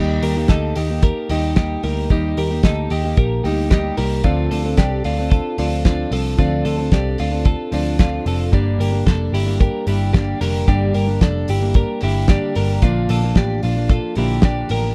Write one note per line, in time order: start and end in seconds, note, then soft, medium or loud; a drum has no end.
0.00 0.18 D#2 loud
0.00 0.36 D#3 medium
0.00 0.36 G3 medium
0.00 0.36 A#3 medium
0.00 0.23 D#4 medium
0.00 0.36 D#4 medium
0.00 0.22 G4 medium
0.00 0.35 G4 loud
0.22 0.45 D#2 medium
0.22 0.50 G4 medium
0.22 0.49 A#4 medium
0.22 open hi-hat medium
0.36 0.90 A#3 soft
0.36 0.89 D#4 medium
0.36 0.88 G4 medium
0.48 0.72 D2 medium
0.48 0.76 D#4 medium
0.48 0.76 A4 medium
0.48 kick medium
0.48 snare medium
0.48 closed hi-hat medium
0.76 1.11 D#2 medium
0.76 1.03 D#4 medium
0.76 1.03 G4 medium
0.76 open hi-hat medium
0.90 1.29 A#3 soft
0.90 1.30 D#4 soft
0.90 1.30 G4 medium
1.03 1.29 G4 medium
1.03 1.30 A#4 medium
1.03 kick loud
1.03 closed hi-hat medium
1.29 1.75 D#2 medium
1.29 1.55 G3 medium
1.29 1.56 A#3 medium
1.29 1.57 D#4 medium
1.29 1.56 D#4 medium
1.29 1.56 G4 medium
1.29 1.57 G4 medium
1.29 open hi-hat medium
1.56 1.82 G3 medium
1.56 1.83 A#3 medium
1.56 1.84 D#4 medium
1.56 1.83 D#4 medium
1.56 1.83 G4 medium
1.56 1.84 G4 medium
1.56 kick loud
1.56 snare loud
1.56 closed hi-hat medium
1.83 2.06 D2 medium
1.83 2.10 G3 medium
1.83 2.11 A#3 medium
1.83 2.10 D#4 medium
1.83 2.09 G4 medium
1.83 2.11 G4 medium
1.83 2.10 A#4 medium
1.83 open hi-hat medium
2.10 2.33 D#2 loud
2.10 2.51 D#3 medium
2.10 2.51 G3 medium
2.10 2.51 A#3 medium
2.10 2.38 D#4 medium
2.10 2.51 D#4 medium
2.10 2.37 G4 medium
2.10 2.50 G4 medium
2.10 kick medium
2.10 closed hi-hat medium
2.37 2.60 D#2 medium
2.37 2.64 G4 medium
2.37 2.64 A#4 medium
2.37 open hi-hat medium
2.51 3.05 A#3 soft
2.51 3.05 D#4 medium
2.51 3.04 G4 medium
2.63 2.87 D2 medium
2.63 2.91 D#4 medium
2.63 2.91 A4 medium
2.63 kick medium
2.63 snare loud
2.63 closed hi-hat medium
2.90 3.14 D#2 medium
2.90 3.18 D#4 soft
2.90 3.17 G4 medium
2.90 open hi-hat medium
3.05 3.44 A#3 soft
3.05 3.45 D#4 soft
3.05 3.45 G4 medium
3.17 3.40 A#1 medium
3.17 3.43 G4 medium
3.17 3.44 A#4 medium
3.17 kick loud
3.17 closed hi-hat medium
3.44 3.90 D2 medium
3.44 3.70 G3 medium
3.44 3.71 A#3 medium
3.44 3.70 D#4 medium
3.44 3.71 D#4 medium
3.44 3.69 G4 medium
3.44 3.71 G4 medium
3.44 open hi-hat medium
3.70 3.96 G3 medium
3.70 3.97 A#3 medium
3.70 3.98 D#4 medium
3.70 3.97 D#4 medium
3.70 3.97 G4 medium
3.70 3.98 G4 medium
3.70 kick loud
3.70 snare loud
3.70 closed hi-hat medium
3.97 4.21 C2 medium
3.97 4.24 G3 medium
3.97 4.25 A#3 medium
3.97 4.25 D#4 medium
3.97 4.24 G4 medium
3.97 4.25 G4 medium
3.97 4.24 A#4 medium
3.97 open hi-hat medium
4.24 4.47 D2 loud
4.24 4.65 D3 medium
4.24 4.65 F3 medium
4.24 4.65 C4 medium
4.24 4.51 D4 medium
4.24 4.64 D4 medium
4.24 4.51 F4 medium
4.24 4.63 A4 medium
4.24 kick loud
4.24 closed hi-hat medium
4.51 4.74 D2 medium
4.51 4.77 F4 medium
4.51 4.78 A4 medium
4.51 open hi-hat medium
4.64 5.19 C4 soft
4.64 5.19 D4 medium
4.64 5.17 A4 medium
4.77 5.01 C2 medium
4.77 5.04 D4 medium
4.77 5.05 G4 medium
4.77 kick medium
4.77 snare loud
4.77 closed hi-hat medium
5.04 5.39 D2 medium
5.04 5.32 D4 medium
5.04 5.30 F4 medium
5.04 open hi-hat medium
5.19 5.57 C4 soft
5.19 5.58 D4 soft
5.19 5.59 A4 medium
5.30 5.57 F4 medium
5.30 5.58 A4 medium
5.30 kick loud
5.30 closed hi-hat medium
5.58 6.04 D2 medium
5.58 5.83 F3 medium
5.58 5.84 C4 medium
5.58 5.85 D4 medium
5.58 5.84 F4 medium
5.58 5.85 A4 medium
5.58 open hi-hat medium
5.85 6.11 F3 medium
5.85 6.12 C4 medium
5.85 6.12 D4 medium
5.85 6.12 F4 medium
5.85 6.12 A4 medium
5.85 kick loud
5.85 snare medium
5.85 closed hi-hat medium
6.11 6.34 C2 medium
6.11 6.37 F3 medium
6.11 6.37 C4 medium
6.11 6.37 D4 medium
6.11 6.38 F4 medium
6.11 6.39 A4 medium
6.11 6.38 A4 medium
6.11 open hi-hat medium
6.38 6.62 D2 loud
6.38 6.78 D3 medium
6.38 6.79 F3 medium
6.38 6.79 C4 medium
6.38 6.78 D4 loud
6.38 6.66 D4 medium
6.38 6.65 F4 medium
6.38 6.77 A4 medium
6.38 kick loud
6.38 closed hi-hat medium
6.65 6.88 D2 medium
6.65 6.92 F4 medium
6.65 6.92 A4 medium
6.65 open hi-hat medium
6.78 7.32 C4 soft
6.78 7.32 D4 medium
6.78 7.30 A4 medium
6.92 7.15 C2 medium
6.92 7.19 D4 medium
6.92 7.19 G4 medium
6.92 kick medium
6.92 snare medium
6.92 closed hi-hat medium
7.18 7.54 D2 medium
7.18 7.47 D4 medium
7.18 7.46 F4 medium
7.18 open hi-hat medium
7.32 7.71 C4 soft
7.32 7.72 D4 soft
7.32 7.72 A4 medium
7.45 7.72 F4 medium
7.45 7.73 A4 medium
7.45 kick loud
7.45 closed hi-hat medium
7.72 8.18 D2 medium
7.72 7.98 F3 medium
7.72 7.98 C4 medium
7.72 7.99 D4 medium
7.72 7.99 F4 medium
7.72 7.99 A4 medium
7.72 open hi-hat medium
7.99 8.25 F3 medium
7.99 8.25 C4 medium
7.99 8.26 D4 medium
7.99 8.27 D4 medium
7.99 8.26 F4 medium
7.99 8.26 A4 medium
7.99 kick loud
7.99 snare loud
7.99 closed hi-hat medium
8.26 8.49 F1 medium
8.26 8.52 F3 medium
8.26 8.52 C4 medium
8.26 8.52 D4 medium
8.26 8.53 F4 medium
8.26 8.54 A4 medium
8.26 open hi-hat medium
8.51 8.76 G1 loud
8.51 8.92 G2 medium
8.51 8.93 D3 medium
8.51 8.93 G3 medium
8.51 8.93 A#3 medium
8.51 8.91 D4 loud
8.51 8.80 D4 medium
8.51 8.80 G4 medium
8.51 kick loud
8.51 closed hi-hat medium
8.79 9.02 G1 medium
8.79 9.07 G4 medium
8.79 9.06 A#4 medium
8.79 open hi-hat medium
8.92 9.47 G3 soft
8.92 9.47 A#3 medium
8.92 9.45 D4 medium
9.06 9.29 F1 medium
9.06 9.34 D4 medium
9.06 9.33 A4 medium
9.06 kick medium
9.06 snare loud
9.06 closed hi-hat medium
9.33 9.67 G1 medium
9.33 9.60 E4 medium
9.33 9.60 G4 medium
9.33 open hi-hat medium
9.46 9.86 G3 soft
9.46 9.87 A#3 medium
9.46 9.87 D4 medium
9.60 9.87 G4 medium
9.60 9.87 A#4 medium
9.60 kick loud
9.60 closed hi-hat medium
9.87 10.33 G1 medium
9.87 10.12 D3 medium
9.87 10.13 G3 medium
9.87 10.14 A#3 medium
9.87 10.14 D4 medium
9.87 10.15 E4 soft
9.87 10.12 G4 medium
9.87 open hi-hat medium
10.13 10.39 D3 medium
10.13 10.39 G3 medium
10.13 10.40 A#3 medium
10.13 10.41 D4 medium
10.13 10.40 D4 medium
10.13 10.40 G4 medium
10.13 kick loud
10.13 snare loud
10.13 closed hi-hat medium
10.40 10.64 F1 medium
10.40 10.66 D3 medium
10.40 10.67 G3 medium
10.40 10.67 A#3 medium
10.40 10.68 D4 medium
10.40 10.67 G4 medium
10.40 10.68 A#4 medium
10.40 open hi-hat medium
10.67 10.91 G1 loud
10.67 11.08 G2 medium
10.67 11.08 D3 medium
10.67 11.08 G3 medium
10.67 11.07 A#3 medium
10.67 10.95 D4 medium
10.67 11.06 D4 loud
10.67 10.94 G4 loud
10.67 kick loud
10.67 closed hi-hat medium
10.94 11.18 G1 medium
10.94 11.22 G4 medium
10.94 11.21 A#4 medium
10.94 open hi-hat medium
11.08 11.61 G3 soft
11.08 11.62 A#3 soft
11.08 11.60 D4 medium
11.21 11.44 F1 medium
11.21 11.49 D4 medium
11.21 11.49 A4 medium
11.21 kick medium
11.21 snare medium
11.21 closed hi-hat medium
11.48 11.83 G1 medium
11.48 11.75 E4 soft
11.48 11.75 G4 medium
11.48 open hi-hat medium
11.60 12.01 G3 soft
11.60 12.02 A#3 medium
11.60 12.01 D4 medium
11.74 12.02 G4 medium
11.74 12.02 A#4 medium
11.74 kick loud
11.74 closed hi-hat medium
12.01 12.37 G1 medium
12.01 12.27 D3 medium
12.01 12.28 G3 medium
12.01 12.28 A#3 medium
12.01 12.29 D4 medium
12.01 12.30 E4 medium
12.01 12.28 G4 medium
12.01 open hi-hat medium
12.28 12.55 D3 medium
12.28 12.56 G3 medium
12.28 12.56 A#3 medium
12.28 12.56 D4 medium
12.28 12.57 D4 medium
12.28 12.56 G4 medium
12.28 kick loud
12.28 snare loud
12.28 closed hi-hat medium
12.55 12.79 G1 medium
12.55 12.82 D3 medium
12.55 12.83 G3 medium
12.55 12.83 A#3 medium
12.55 12.83 D4 medium
12.55 12.83 G4 medium
12.55 12.83 A#4 medium
12.55 open hi-hat medium
12.82 13.05 A#1 loud
12.82 13.23 A#2 medium
12.82 13.23 D3 medium
12.82 13.24 F3 medium
12.82 13.23 A#3 loud
12.82 13.10 D4 medium
12.82 13.22 D4 medium
12.82 13.10 F4 medium
12.82 kick loud
12.82 closed hi-hat medium
13.09 13.32 A#1 medium
13.09 13.37 F4 medium
13.09 13.37 A4 medium
13.09 open hi-hat medium
13.23 13.78 F3 soft
13.23 13.77 A#3 medium
13.23 13.75 D4 medium
13.35 13.59 A1 medium
13.35 13.63 D4 medium
13.35 13.63 G4 medium
13.35 kick medium
13.35 snare loud
13.35 closed hi-hat medium
13.63 13.98 A#1 medium
13.63 13.91 D4 medium
13.63 13.90 F4 medium
13.63 open hi-hat medium
13.77 14.16 F3 soft
13.77 14.17 A#3 soft
13.77 14.17 D4 medium
13.89 14.16 F4 medium
13.89 14.17 A4 medium
13.89 kick loud
13.89 closed hi-hat medium
14.15 14.62 A#1 medium
14.15 14.42 D3 medium
14.15 14.43 F3 medium
14.15 14.44 A#3 medium
14.15 14.44 D4 medium
14.15 14.44 E4 medium
14.15 14.43 G4 medium
14.15 open hi-hat medium
14.42 14.69 D3 medium
14.42 14.70 F3 medium
14.42 14.71 A#3 medium
14.42 14.71 D4 medium
14.42 14.70 G4 medium
14.42 kick loud
14.42 snare loud
14.42 closed hi-hat medium
14.69 14.93 A1 medium
14.69 14.95 D3 medium
14.69 14.95 F3 medium
14.69 14.95 A#3 medium
14.69 14.95 D4 medium
14.69 14.95 G4 medium
14.69 14.95 A#4 medium
14.69 open hi-hat medium